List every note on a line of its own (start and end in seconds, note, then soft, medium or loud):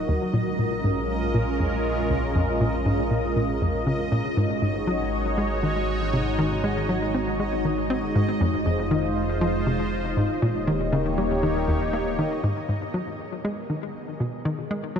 0.00 0.31 D#1 medium
0.00 0.30 F#3 medium
0.00 0.30 D#4 medium
0.00 0.32 F#4 medium
0.00 0.30 A#4 medium
0.00 12.45 D#5 medium
0.08 0.18 D#2 loud
0.34 4.35 A#1 medium
0.34 0.43 A#2 loud
0.34 4.33 G#3 medium
0.34 4.33 C#4 medium
0.34 4.33 F4 medium
0.34 4.33 A#4 medium
0.59 0.75 A#2 medium
0.84 1.00 G#2 medium
1.34 1.51 A#2 loud
1.60 1.76 F2 medium
2.10 2.20 C#2 medium
2.36 2.45 F2 loud
2.61 2.85 A#2 loud
2.86 3.02 G#2 loud
3.11 3.27 A#2 medium
3.36 3.52 A#2 medium
3.62 3.78 F2 medium
3.87 4.03 C#3 medium
4.12 4.22 A#2 loud
4.37 8.38 G#1 medium
4.37 4.47 G#2 loud
4.37 10.38 G#3 medium
4.37 10.38 D#4 medium
4.37 8.37 F#4 medium
4.37 8.37 C#5 medium
4.62 4.78 G#2 medium
4.87 5.03 F#3 loud
5.38 5.54 G#3 loud
5.63 5.79 D#3 medium
6.13 6.23 C3 medium
6.39 6.48 D#3 loud
6.64 6.88 G#3 loud
6.89 7.05 F#3 medium
7.14 7.30 C4 medium
7.40 7.56 G#3 medium
7.65 7.81 D#3 medium
7.90 8.06 C4 loud
8.15 8.25 G#2 loud
8.41 10.40 F1 medium
8.41 8.50 F2 loud
8.41 10.40 F4 medium
8.41 10.40 C5 medium
8.66 8.82 F2 medium
8.91 9.07 D#3 loud
9.41 9.57 F3 loud
9.67 9.83 C3 medium
10.17 10.27 G#2 medium
10.42 12.42 D#1 medium
10.42 10.52 A#2 loud
10.42 12.42 A#3 medium
10.42 12.42 D#4 medium
10.42 12.42 G4 medium
10.42 12.42 C#5 medium
10.68 10.91 D#3 loud
10.93 11.09 C#3 loud
11.18 11.34 G3 medium
11.43 11.59 D#3 medium
11.68 11.92 D#2 medium
11.93 12.09 A#3 medium
12.19 12.35 D#3 medium
12.44 12.53 G#2 loud
12.44 15.00 B3 medium
12.44 15.00 G#4 medium
12.44 15.00 A#4 medium
12.44 15.00 D#5 medium
12.69 12.85 G#2 medium
12.94 13.10 F#3 medium
13.45 13.61 G#3 loud
13.70 13.86 D#3 medium
14.20 14.30 B2 medium
14.45 14.55 D#3 loud
14.71 14.95 G#3 loud
14.96 15.00 F#3 medium